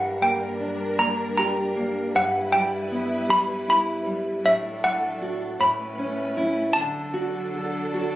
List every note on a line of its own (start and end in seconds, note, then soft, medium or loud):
0.00 2.12 G2 medium
0.00 2.13 G3 medium
0.00 2.13 D4 medium
0.00 2.13 A#4 medium
0.00 0.23 F#5 medium
0.21 0.98 A#3 soft
0.21 1.02 G5 medium
0.60 2.11 D4 soft
0.99 1.75 A#3 soft
0.99 1.16 A#5 medium
1.38 2.13 G4 soft
1.38 2.11 A#5 medium
1.76 2.13 A#3 soft
2.14 4.41 G2 medium
2.14 4.42 G3 medium
2.14 4.42 E4 medium
2.14 4.42 B4 medium
2.14 2.51 F#5 medium
2.52 3.28 G3 soft
2.52 3.26 G5 medium
2.91 4.40 B3 soft
3.29 4.05 G3 medium
3.29 3.69 B5 loud
3.68 4.42 E4 soft
3.68 4.48 B5 medium
4.06 4.43 G3 soft
4.43 5.57 A2 medium
4.43 5.56 A2 medium
4.43 5.57 F#3 medium
4.43 5.57 D4 medium
4.43 5.58 A4 medium
4.43 4.84 E5 medium
4.84 5.58 A3 soft
4.84 5.56 F#5 medium
5.22 5.58 F#4 medium
5.59 6.72 A2 medium
5.59 6.75 A3 medium
5.59 6.74 C#4 medium
5.59 6.74 B4 medium
5.59 6.33 B5 medium
5.98 6.73 C#4 soft
6.37 6.74 E4 medium
6.73 8.16 D3 medium
6.73 8.16 F#3 medium
6.73 8.16 D4 medium
6.73 8.16 A4 medium
6.73 8.16 A5 medium
7.14 7.93 F#4 soft
7.54 8.16 A4 soft
7.94 8.16 F#4 soft